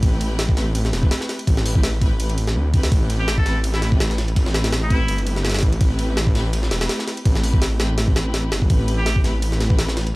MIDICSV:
0, 0, Header, 1, 5, 480
1, 0, Start_track
1, 0, Key_signature, 0, "minor"
1, 0, Tempo, 361446
1, 36, Time_signature, 4, 2, 24, 8
1, 13486, End_track
2, 0, Start_track
2, 0, Title_t, "Muted trumpet"
2, 0, Program_c, 0, 59
2, 4243, Note_on_c, 0, 67, 91
2, 4477, Note_off_c, 0, 67, 0
2, 4485, Note_on_c, 0, 69, 92
2, 4770, Note_off_c, 0, 69, 0
2, 4968, Note_on_c, 0, 64, 89
2, 5037, Note_off_c, 0, 64, 0
2, 5079, Note_on_c, 0, 64, 77
2, 5161, Note_off_c, 0, 64, 0
2, 6405, Note_on_c, 0, 64, 95
2, 6886, Note_off_c, 0, 64, 0
2, 11923, Note_on_c, 0, 67, 93
2, 12209, Note_off_c, 0, 67, 0
2, 13486, End_track
3, 0, Start_track
3, 0, Title_t, "String section"
3, 0, Program_c, 1, 48
3, 39, Note_on_c, 1, 60, 85
3, 39, Note_on_c, 1, 64, 86
3, 39, Note_on_c, 1, 67, 89
3, 39, Note_on_c, 1, 71, 105
3, 41, Note_on_c, 1, 57, 94
3, 731, Note_off_c, 1, 60, 0
3, 731, Note_off_c, 1, 64, 0
3, 731, Note_off_c, 1, 71, 0
3, 732, Note_off_c, 1, 57, 0
3, 732, Note_off_c, 1, 67, 0
3, 759, Note_on_c, 1, 60, 86
3, 760, Note_on_c, 1, 67, 88
3, 760, Note_on_c, 1, 71, 105
3, 761, Note_on_c, 1, 57, 93
3, 761, Note_on_c, 1, 64, 86
3, 971, Note_off_c, 1, 60, 0
3, 972, Note_off_c, 1, 64, 0
3, 972, Note_off_c, 1, 67, 0
3, 972, Note_off_c, 1, 71, 0
3, 973, Note_off_c, 1, 57, 0
3, 997, Note_on_c, 1, 64, 82
3, 997, Note_on_c, 1, 71, 97
3, 998, Note_on_c, 1, 57, 88
3, 998, Note_on_c, 1, 60, 81
3, 998, Note_on_c, 1, 67, 82
3, 1930, Note_off_c, 1, 64, 0
3, 1931, Note_off_c, 1, 57, 0
3, 1931, Note_off_c, 1, 60, 0
3, 1931, Note_off_c, 1, 67, 0
3, 1931, Note_off_c, 1, 71, 0
3, 1957, Note_on_c, 1, 57, 96
3, 1957, Note_on_c, 1, 64, 89
3, 1959, Note_on_c, 1, 71, 104
3, 1960, Note_on_c, 1, 60, 89
3, 1960, Note_on_c, 1, 67, 88
3, 2650, Note_off_c, 1, 64, 0
3, 2651, Note_off_c, 1, 57, 0
3, 2651, Note_off_c, 1, 71, 0
3, 2652, Note_off_c, 1, 60, 0
3, 2652, Note_off_c, 1, 67, 0
3, 2677, Note_on_c, 1, 57, 91
3, 2677, Note_on_c, 1, 64, 87
3, 2679, Note_on_c, 1, 60, 85
3, 2680, Note_on_c, 1, 67, 87
3, 2680, Note_on_c, 1, 71, 103
3, 2891, Note_off_c, 1, 57, 0
3, 2891, Note_off_c, 1, 60, 0
3, 2891, Note_off_c, 1, 64, 0
3, 2892, Note_off_c, 1, 67, 0
3, 2892, Note_off_c, 1, 71, 0
3, 2918, Note_on_c, 1, 71, 93
3, 2919, Note_on_c, 1, 57, 82
3, 2920, Note_on_c, 1, 60, 78
3, 2920, Note_on_c, 1, 64, 79
3, 2920, Note_on_c, 1, 67, 75
3, 3262, Note_off_c, 1, 57, 0
3, 3262, Note_off_c, 1, 71, 0
3, 3263, Note_off_c, 1, 60, 0
3, 3263, Note_off_c, 1, 64, 0
3, 3263, Note_off_c, 1, 67, 0
3, 3293, Note_on_c, 1, 60, 69
3, 3293, Note_on_c, 1, 64, 71
3, 3295, Note_on_c, 1, 57, 78
3, 3295, Note_on_c, 1, 67, 69
3, 3295, Note_on_c, 1, 71, 82
3, 3613, Note_off_c, 1, 60, 0
3, 3613, Note_off_c, 1, 64, 0
3, 3614, Note_off_c, 1, 57, 0
3, 3614, Note_off_c, 1, 67, 0
3, 3614, Note_off_c, 1, 71, 0
3, 3644, Note_on_c, 1, 64, 88
3, 3644, Note_on_c, 1, 67, 85
3, 3645, Note_on_c, 1, 60, 85
3, 3646, Note_on_c, 1, 57, 92
3, 3647, Note_on_c, 1, 71, 106
3, 3774, Note_off_c, 1, 64, 0
3, 3774, Note_off_c, 1, 67, 0
3, 3775, Note_off_c, 1, 57, 0
3, 3775, Note_off_c, 1, 60, 0
3, 3776, Note_off_c, 1, 71, 0
3, 3879, Note_on_c, 1, 60, 88
3, 3880, Note_on_c, 1, 67, 86
3, 3881, Note_on_c, 1, 57, 92
3, 3881, Note_on_c, 1, 64, 87
3, 3884, Note_on_c, 1, 71, 102
3, 4572, Note_off_c, 1, 57, 0
3, 4572, Note_off_c, 1, 60, 0
3, 4572, Note_off_c, 1, 67, 0
3, 4573, Note_off_c, 1, 64, 0
3, 4574, Note_off_c, 1, 71, 0
3, 4596, Note_on_c, 1, 64, 85
3, 4598, Note_on_c, 1, 60, 83
3, 4598, Note_on_c, 1, 67, 84
3, 4598, Note_on_c, 1, 71, 102
3, 4599, Note_on_c, 1, 57, 94
3, 4810, Note_off_c, 1, 64, 0
3, 4811, Note_off_c, 1, 57, 0
3, 4811, Note_off_c, 1, 60, 0
3, 4811, Note_off_c, 1, 67, 0
3, 4811, Note_off_c, 1, 71, 0
3, 4835, Note_on_c, 1, 64, 82
3, 4836, Note_on_c, 1, 67, 81
3, 4837, Note_on_c, 1, 57, 90
3, 4837, Note_on_c, 1, 60, 80
3, 4838, Note_on_c, 1, 71, 98
3, 5770, Note_off_c, 1, 57, 0
3, 5770, Note_off_c, 1, 64, 0
3, 5770, Note_off_c, 1, 67, 0
3, 5771, Note_off_c, 1, 60, 0
3, 5771, Note_off_c, 1, 71, 0
3, 5790, Note_on_c, 1, 67, 85
3, 5791, Note_on_c, 1, 60, 88
3, 5792, Note_on_c, 1, 57, 95
3, 5792, Note_on_c, 1, 64, 85
3, 5793, Note_on_c, 1, 71, 103
3, 6487, Note_off_c, 1, 67, 0
3, 6488, Note_off_c, 1, 57, 0
3, 6488, Note_off_c, 1, 60, 0
3, 6488, Note_off_c, 1, 64, 0
3, 6488, Note_off_c, 1, 71, 0
3, 6510, Note_on_c, 1, 57, 96
3, 6510, Note_on_c, 1, 67, 87
3, 6510, Note_on_c, 1, 71, 103
3, 6511, Note_on_c, 1, 60, 87
3, 6512, Note_on_c, 1, 64, 89
3, 6727, Note_off_c, 1, 57, 0
3, 6727, Note_off_c, 1, 60, 0
3, 6727, Note_off_c, 1, 67, 0
3, 6727, Note_off_c, 1, 71, 0
3, 6728, Note_off_c, 1, 64, 0
3, 6750, Note_on_c, 1, 57, 88
3, 6751, Note_on_c, 1, 60, 80
3, 6751, Note_on_c, 1, 64, 80
3, 6752, Note_on_c, 1, 67, 82
3, 6753, Note_on_c, 1, 71, 99
3, 7687, Note_off_c, 1, 57, 0
3, 7687, Note_off_c, 1, 60, 0
3, 7688, Note_off_c, 1, 64, 0
3, 7688, Note_off_c, 1, 67, 0
3, 7688, Note_off_c, 1, 71, 0
3, 7709, Note_on_c, 1, 67, 87
3, 7709, Note_on_c, 1, 71, 105
3, 7710, Note_on_c, 1, 57, 96
3, 7710, Note_on_c, 1, 64, 88
3, 7711, Note_on_c, 1, 60, 89
3, 8407, Note_off_c, 1, 57, 0
3, 8407, Note_off_c, 1, 64, 0
3, 8407, Note_off_c, 1, 67, 0
3, 8407, Note_off_c, 1, 71, 0
3, 8408, Note_off_c, 1, 60, 0
3, 8434, Note_on_c, 1, 60, 85
3, 8434, Note_on_c, 1, 71, 103
3, 8435, Note_on_c, 1, 67, 87
3, 8436, Note_on_c, 1, 57, 94
3, 8436, Note_on_c, 1, 64, 87
3, 8649, Note_off_c, 1, 60, 0
3, 8649, Note_off_c, 1, 71, 0
3, 8650, Note_off_c, 1, 57, 0
3, 8650, Note_off_c, 1, 64, 0
3, 8650, Note_off_c, 1, 67, 0
3, 8672, Note_on_c, 1, 60, 80
3, 8672, Note_on_c, 1, 71, 99
3, 8673, Note_on_c, 1, 57, 88
3, 8673, Note_on_c, 1, 64, 82
3, 8675, Note_on_c, 1, 67, 82
3, 9608, Note_off_c, 1, 60, 0
3, 9608, Note_off_c, 1, 71, 0
3, 9609, Note_off_c, 1, 57, 0
3, 9609, Note_off_c, 1, 64, 0
3, 9609, Note_off_c, 1, 67, 0
3, 9635, Note_on_c, 1, 67, 88
3, 9635, Note_on_c, 1, 71, 104
3, 9636, Note_on_c, 1, 57, 93
3, 9636, Note_on_c, 1, 60, 86
3, 9638, Note_on_c, 1, 64, 84
3, 10329, Note_off_c, 1, 67, 0
3, 10330, Note_off_c, 1, 57, 0
3, 10330, Note_off_c, 1, 60, 0
3, 10330, Note_off_c, 1, 71, 0
3, 10331, Note_off_c, 1, 64, 0
3, 10355, Note_on_c, 1, 57, 96
3, 10355, Note_on_c, 1, 60, 86
3, 10355, Note_on_c, 1, 67, 83
3, 10355, Note_on_c, 1, 71, 102
3, 10357, Note_on_c, 1, 64, 85
3, 10569, Note_off_c, 1, 57, 0
3, 10570, Note_off_c, 1, 60, 0
3, 10570, Note_off_c, 1, 64, 0
3, 10570, Note_off_c, 1, 67, 0
3, 10570, Note_off_c, 1, 71, 0
3, 10594, Note_on_c, 1, 67, 81
3, 10595, Note_on_c, 1, 57, 89
3, 10595, Note_on_c, 1, 60, 82
3, 10597, Note_on_c, 1, 64, 83
3, 10598, Note_on_c, 1, 71, 98
3, 11529, Note_off_c, 1, 60, 0
3, 11529, Note_off_c, 1, 67, 0
3, 11530, Note_off_c, 1, 57, 0
3, 11531, Note_off_c, 1, 64, 0
3, 11531, Note_off_c, 1, 71, 0
3, 11554, Note_on_c, 1, 71, 104
3, 11556, Note_on_c, 1, 57, 97
3, 11556, Note_on_c, 1, 60, 85
3, 11556, Note_on_c, 1, 64, 86
3, 11557, Note_on_c, 1, 67, 85
3, 12249, Note_off_c, 1, 71, 0
3, 12250, Note_off_c, 1, 57, 0
3, 12250, Note_off_c, 1, 60, 0
3, 12250, Note_off_c, 1, 64, 0
3, 12250, Note_off_c, 1, 67, 0
3, 12275, Note_on_c, 1, 60, 85
3, 12276, Note_on_c, 1, 64, 89
3, 12276, Note_on_c, 1, 71, 103
3, 12277, Note_on_c, 1, 57, 95
3, 12279, Note_on_c, 1, 67, 85
3, 12490, Note_off_c, 1, 57, 0
3, 12490, Note_off_c, 1, 60, 0
3, 12490, Note_off_c, 1, 64, 0
3, 12490, Note_off_c, 1, 71, 0
3, 12491, Note_off_c, 1, 67, 0
3, 12509, Note_on_c, 1, 57, 88
3, 12510, Note_on_c, 1, 60, 80
3, 12510, Note_on_c, 1, 67, 80
3, 12512, Note_on_c, 1, 71, 100
3, 12513, Note_on_c, 1, 64, 80
3, 13447, Note_off_c, 1, 57, 0
3, 13447, Note_off_c, 1, 60, 0
3, 13447, Note_off_c, 1, 67, 0
3, 13448, Note_off_c, 1, 64, 0
3, 13448, Note_off_c, 1, 71, 0
3, 13486, End_track
4, 0, Start_track
4, 0, Title_t, "Detuned saw bass"
4, 0, Program_c, 2, 39
4, 36, Note_on_c, 2, 33, 100
4, 1219, Note_off_c, 2, 33, 0
4, 1237, Note_on_c, 2, 28, 100
4, 1455, Note_off_c, 2, 28, 0
4, 1957, Note_on_c, 2, 33, 97
4, 3149, Note_off_c, 2, 33, 0
4, 3157, Note_on_c, 2, 33, 83
4, 3397, Note_on_c, 2, 38, 96
4, 3417, Note_off_c, 2, 33, 0
4, 3859, Note_off_c, 2, 38, 0
4, 3875, Note_on_c, 2, 33, 98
4, 5778, Note_off_c, 2, 33, 0
4, 5795, Note_on_c, 2, 33, 96
4, 6738, Note_off_c, 2, 33, 0
4, 6756, Note_on_c, 2, 31, 92
4, 7458, Note_off_c, 2, 31, 0
4, 7472, Note_on_c, 2, 33, 106
4, 7692, Note_off_c, 2, 33, 0
4, 7712, Note_on_c, 2, 33, 100
4, 8897, Note_off_c, 2, 33, 0
4, 8913, Note_on_c, 2, 28, 99
4, 9133, Note_off_c, 2, 28, 0
4, 9635, Note_on_c, 2, 33, 100
4, 11308, Note_off_c, 2, 33, 0
4, 11316, Note_on_c, 2, 31, 98
4, 11534, Note_off_c, 2, 31, 0
4, 11554, Note_on_c, 2, 33, 99
4, 13458, Note_off_c, 2, 33, 0
4, 13486, End_track
5, 0, Start_track
5, 0, Title_t, "Drums"
5, 36, Note_on_c, 9, 36, 109
5, 36, Note_on_c, 9, 51, 88
5, 169, Note_off_c, 9, 36, 0
5, 169, Note_off_c, 9, 51, 0
5, 276, Note_on_c, 9, 51, 72
5, 409, Note_off_c, 9, 51, 0
5, 516, Note_on_c, 9, 38, 123
5, 516, Note_on_c, 9, 51, 93
5, 647, Note_on_c, 9, 36, 95
5, 649, Note_off_c, 9, 38, 0
5, 649, Note_off_c, 9, 51, 0
5, 756, Note_on_c, 9, 38, 38
5, 756, Note_on_c, 9, 51, 69
5, 780, Note_off_c, 9, 36, 0
5, 889, Note_off_c, 9, 38, 0
5, 889, Note_off_c, 9, 51, 0
5, 995, Note_on_c, 9, 51, 94
5, 1127, Note_on_c, 9, 38, 44
5, 1128, Note_off_c, 9, 51, 0
5, 1237, Note_off_c, 9, 38, 0
5, 1237, Note_on_c, 9, 38, 46
5, 1237, Note_on_c, 9, 51, 73
5, 1367, Note_on_c, 9, 36, 99
5, 1370, Note_off_c, 9, 38, 0
5, 1370, Note_off_c, 9, 51, 0
5, 1475, Note_on_c, 9, 38, 117
5, 1475, Note_on_c, 9, 51, 90
5, 1499, Note_off_c, 9, 36, 0
5, 1607, Note_off_c, 9, 38, 0
5, 1607, Note_on_c, 9, 38, 40
5, 1608, Note_off_c, 9, 51, 0
5, 1716, Note_off_c, 9, 38, 0
5, 1716, Note_on_c, 9, 38, 46
5, 1716, Note_on_c, 9, 51, 70
5, 1848, Note_off_c, 9, 38, 0
5, 1848, Note_off_c, 9, 51, 0
5, 1848, Note_on_c, 9, 51, 44
5, 1957, Note_on_c, 9, 36, 111
5, 1958, Note_off_c, 9, 51, 0
5, 1958, Note_on_c, 9, 51, 91
5, 2089, Note_on_c, 9, 38, 48
5, 2090, Note_off_c, 9, 36, 0
5, 2091, Note_off_c, 9, 51, 0
5, 2200, Note_on_c, 9, 46, 84
5, 2222, Note_off_c, 9, 38, 0
5, 2328, Note_on_c, 9, 36, 101
5, 2332, Note_off_c, 9, 46, 0
5, 2436, Note_on_c, 9, 38, 121
5, 2436, Note_on_c, 9, 51, 94
5, 2461, Note_off_c, 9, 36, 0
5, 2569, Note_off_c, 9, 38, 0
5, 2569, Note_off_c, 9, 51, 0
5, 2676, Note_on_c, 9, 36, 96
5, 2677, Note_on_c, 9, 51, 70
5, 2809, Note_off_c, 9, 36, 0
5, 2810, Note_off_c, 9, 51, 0
5, 2918, Note_on_c, 9, 51, 90
5, 3048, Note_off_c, 9, 51, 0
5, 3048, Note_on_c, 9, 51, 45
5, 3157, Note_off_c, 9, 51, 0
5, 3157, Note_on_c, 9, 51, 72
5, 3286, Note_on_c, 9, 38, 48
5, 3289, Note_off_c, 9, 51, 0
5, 3419, Note_off_c, 9, 38, 0
5, 3633, Note_on_c, 9, 51, 69
5, 3635, Note_on_c, 9, 36, 96
5, 3764, Note_off_c, 9, 51, 0
5, 3764, Note_on_c, 9, 38, 105
5, 3764, Note_on_c, 9, 51, 79
5, 3768, Note_off_c, 9, 36, 0
5, 3875, Note_off_c, 9, 51, 0
5, 3875, Note_on_c, 9, 36, 109
5, 3875, Note_on_c, 9, 51, 86
5, 3896, Note_off_c, 9, 38, 0
5, 4008, Note_off_c, 9, 36, 0
5, 4008, Note_off_c, 9, 51, 0
5, 4114, Note_on_c, 9, 51, 68
5, 4247, Note_off_c, 9, 51, 0
5, 4355, Note_on_c, 9, 38, 120
5, 4355, Note_on_c, 9, 51, 92
5, 4486, Note_on_c, 9, 36, 93
5, 4488, Note_off_c, 9, 38, 0
5, 4488, Note_off_c, 9, 51, 0
5, 4594, Note_on_c, 9, 38, 39
5, 4594, Note_on_c, 9, 51, 68
5, 4619, Note_off_c, 9, 36, 0
5, 4727, Note_off_c, 9, 38, 0
5, 4727, Note_off_c, 9, 51, 0
5, 4832, Note_on_c, 9, 51, 92
5, 4964, Note_on_c, 9, 38, 45
5, 4965, Note_off_c, 9, 51, 0
5, 5074, Note_off_c, 9, 38, 0
5, 5074, Note_on_c, 9, 38, 47
5, 5074, Note_on_c, 9, 51, 71
5, 5206, Note_on_c, 9, 36, 98
5, 5207, Note_off_c, 9, 38, 0
5, 5207, Note_off_c, 9, 51, 0
5, 5316, Note_on_c, 9, 38, 121
5, 5316, Note_on_c, 9, 51, 88
5, 5339, Note_off_c, 9, 36, 0
5, 5446, Note_off_c, 9, 38, 0
5, 5446, Note_on_c, 9, 38, 39
5, 5449, Note_off_c, 9, 51, 0
5, 5554, Note_off_c, 9, 38, 0
5, 5554, Note_on_c, 9, 38, 46
5, 5554, Note_on_c, 9, 51, 69
5, 5686, Note_off_c, 9, 51, 0
5, 5686, Note_on_c, 9, 51, 44
5, 5687, Note_off_c, 9, 38, 0
5, 5795, Note_off_c, 9, 51, 0
5, 5795, Note_on_c, 9, 36, 111
5, 5795, Note_on_c, 9, 51, 91
5, 5927, Note_on_c, 9, 38, 48
5, 5928, Note_off_c, 9, 36, 0
5, 5928, Note_off_c, 9, 51, 0
5, 6034, Note_off_c, 9, 38, 0
5, 6034, Note_on_c, 9, 38, 108
5, 6034, Note_on_c, 9, 51, 82
5, 6164, Note_off_c, 9, 38, 0
5, 6164, Note_off_c, 9, 51, 0
5, 6164, Note_on_c, 9, 38, 107
5, 6164, Note_on_c, 9, 51, 81
5, 6275, Note_off_c, 9, 38, 0
5, 6275, Note_off_c, 9, 51, 0
5, 6275, Note_on_c, 9, 38, 122
5, 6275, Note_on_c, 9, 51, 91
5, 6408, Note_off_c, 9, 38, 0
5, 6408, Note_off_c, 9, 51, 0
5, 6513, Note_on_c, 9, 36, 97
5, 6513, Note_on_c, 9, 51, 70
5, 6646, Note_off_c, 9, 36, 0
5, 6646, Note_off_c, 9, 51, 0
5, 6752, Note_on_c, 9, 51, 93
5, 6883, Note_off_c, 9, 51, 0
5, 6883, Note_on_c, 9, 51, 43
5, 6993, Note_off_c, 9, 51, 0
5, 6993, Note_on_c, 9, 51, 74
5, 7125, Note_on_c, 9, 38, 48
5, 7126, Note_off_c, 9, 51, 0
5, 7232, Note_off_c, 9, 38, 0
5, 7232, Note_on_c, 9, 38, 90
5, 7232, Note_on_c, 9, 51, 69
5, 7299, Note_off_c, 9, 38, 0
5, 7299, Note_off_c, 9, 51, 0
5, 7299, Note_on_c, 9, 38, 93
5, 7299, Note_on_c, 9, 51, 68
5, 7363, Note_off_c, 9, 38, 0
5, 7363, Note_off_c, 9, 51, 0
5, 7363, Note_on_c, 9, 38, 93
5, 7363, Note_on_c, 9, 51, 69
5, 7419, Note_off_c, 9, 38, 0
5, 7419, Note_off_c, 9, 51, 0
5, 7419, Note_on_c, 9, 38, 94
5, 7419, Note_on_c, 9, 51, 70
5, 7471, Note_off_c, 9, 51, 0
5, 7471, Note_on_c, 9, 51, 69
5, 7473, Note_on_c, 9, 36, 99
5, 7552, Note_off_c, 9, 38, 0
5, 7603, Note_off_c, 9, 51, 0
5, 7603, Note_on_c, 9, 51, 43
5, 7605, Note_off_c, 9, 36, 0
5, 7711, Note_off_c, 9, 51, 0
5, 7711, Note_on_c, 9, 51, 86
5, 7712, Note_on_c, 9, 36, 112
5, 7844, Note_off_c, 9, 51, 0
5, 7845, Note_off_c, 9, 36, 0
5, 7951, Note_on_c, 9, 51, 69
5, 8084, Note_off_c, 9, 51, 0
5, 8192, Note_on_c, 9, 38, 118
5, 8192, Note_on_c, 9, 51, 90
5, 8324, Note_on_c, 9, 36, 95
5, 8325, Note_off_c, 9, 38, 0
5, 8325, Note_off_c, 9, 51, 0
5, 8434, Note_on_c, 9, 38, 39
5, 8434, Note_on_c, 9, 51, 69
5, 8457, Note_off_c, 9, 36, 0
5, 8567, Note_off_c, 9, 38, 0
5, 8567, Note_off_c, 9, 51, 0
5, 8673, Note_on_c, 9, 51, 91
5, 8804, Note_on_c, 9, 38, 44
5, 8806, Note_off_c, 9, 51, 0
5, 8913, Note_off_c, 9, 38, 0
5, 8913, Note_on_c, 9, 38, 109
5, 8913, Note_on_c, 9, 51, 82
5, 9045, Note_off_c, 9, 38, 0
5, 9045, Note_off_c, 9, 51, 0
5, 9045, Note_on_c, 9, 38, 107
5, 9045, Note_on_c, 9, 51, 81
5, 9155, Note_off_c, 9, 38, 0
5, 9155, Note_off_c, 9, 51, 0
5, 9155, Note_on_c, 9, 38, 117
5, 9155, Note_on_c, 9, 51, 91
5, 9286, Note_off_c, 9, 38, 0
5, 9286, Note_on_c, 9, 38, 39
5, 9287, Note_off_c, 9, 51, 0
5, 9396, Note_off_c, 9, 38, 0
5, 9396, Note_on_c, 9, 38, 48
5, 9396, Note_on_c, 9, 51, 70
5, 9526, Note_off_c, 9, 51, 0
5, 9526, Note_on_c, 9, 51, 45
5, 9529, Note_off_c, 9, 38, 0
5, 9634, Note_off_c, 9, 51, 0
5, 9634, Note_on_c, 9, 51, 89
5, 9635, Note_on_c, 9, 36, 110
5, 9767, Note_off_c, 9, 36, 0
5, 9767, Note_off_c, 9, 51, 0
5, 9767, Note_on_c, 9, 38, 47
5, 9874, Note_on_c, 9, 46, 82
5, 9900, Note_off_c, 9, 38, 0
5, 10005, Note_on_c, 9, 36, 99
5, 10007, Note_off_c, 9, 46, 0
5, 10115, Note_on_c, 9, 38, 117
5, 10115, Note_on_c, 9, 51, 91
5, 10138, Note_off_c, 9, 36, 0
5, 10248, Note_off_c, 9, 38, 0
5, 10248, Note_off_c, 9, 51, 0
5, 10354, Note_on_c, 9, 38, 104
5, 10354, Note_on_c, 9, 51, 81
5, 10487, Note_off_c, 9, 38, 0
5, 10487, Note_off_c, 9, 51, 0
5, 10593, Note_on_c, 9, 38, 108
5, 10593, Note_on_c, 9, 51, 85
5, 10726, Note_off_c, 9, 38, 0
5, 10726, Note_off_c, 9, 51, 0
5, 10726, Note_on_c, 9, 36, 84
5, 10836, Note_on_c, 9, 38, 110
5, 10836, Note_on_c, 9, 51, 80
5, 10859, Note_off_c, 9, 36, 0
5, 10969, Note_off_c, 9, 38, 0
5, 10969, Note_off_c, 9, 51, 0
5, 11074, Note_on_c, 9, 38, 105
5, 11074, Note_on_c, 9, 51, 81
5, 11207, Note_off_c, 9, 38, 0
5, 11207, Note_off_c, 9, 51, 0
5, 11312, Note_on_c, 9, 38, 108
5, 11312, Note_on_c, 9, 51, 80
5, 11445, Note_off_c, 9, 38, 0
5, 11445, Note_off_c, 9, 51, 0
5, 11445, Note_on_c, 9, 36, 85
5, 11553, Note_on_c, 9, 51, 87
5, 11554, Note_off_c, 9, 36, 0
5, 11554, Note_on_c, 9, 36, 110
5, 11685, Note_off_c, 9, 51, 0
5, 11687, Note_off_c, 9, 36, 0
5, 11793, Note_on_c, 9, 51, 70
5, 11926, Note_off_c, 9, 51, 0
5, 12033, Note_on_c, 9, 38, 120
5, 12033, Note_on_c, 9, 51, 93
5, 12164, Note_on_c, 9, 36, 95
5, 12165, Note_off_c, 9, 38, 0
5, 12165, Note_off_c, 9, 51, 0
5, 12274, Note_on_c, 9, 38, 38
5, 12274, Note_on_c, 9, 51, 67
5, 12297, Note_off_c, 9, 36, 0
5, 12407, Note_off_c, 9, 38, 0
5, 12407, Note_off_c, 9, 51, 0
5, 12514, Note_on_c, 9, 51, 92
5, 12645, Note_on_c, 9, 38, 44
5, 12647, Note_off_c, 9, 51, 0
5, 12755, Note_off_c, 9, 38, 0
5, 12755, Note_on_c, 9, 38, 47
5, 12755, Note_on_c, 9, 51, 72
5, 12885, Note_on_c, 9, 36, 99
5, 12888, Note_off_c, 9, 38, 0
5, 12888, Note_off_c, 9, 51, 0
5, 12995, Note_on_c, 9, 38, 117
5, 12995, Note_on_c, 9, 51, 90
5, 13018, Note_off_c, 9, 36, 0
5, 13126, Note_off_c, 9, 38, 0
5, 13126, Note_on_c, 9, 38, 40
5, 13128, Note_off_c, 9, 51, 0
5, 13238, Note_off_c, 9, 38, 0
5, 13238, Note_on_c, 9, 38, 47
5, 13238, Note_on_c, 9, 51, 70
5, 13368, Note_off_c, 9, 51, 0
5, 13368, Note_on_c, 9, 51, 43
5, 13371, Note_off_c, 9, 38, 0
5, 13486, Note_off_c, 9, 51, 0
5, 13486, End_track
0, 0, End_of_file